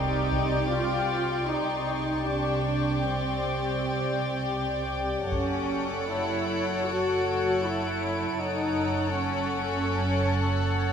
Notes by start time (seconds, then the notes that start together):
Already playing: C2 C3 D#4 G4 D5 G5 C6 C#6, impact
0.32 taiko
0.71 F4
1.47 D#4
2.24 C2 C3 D4 G4 D5 G5
3.02 C4
5.32 F#1 F#2 C#4 A4 C#5 F#5 D7, taiko
6.09 E4
6.86 F#4
7.62 E4
8.39 F#1 F#2 D#4 A4 C#5 F#5
9.17 C#4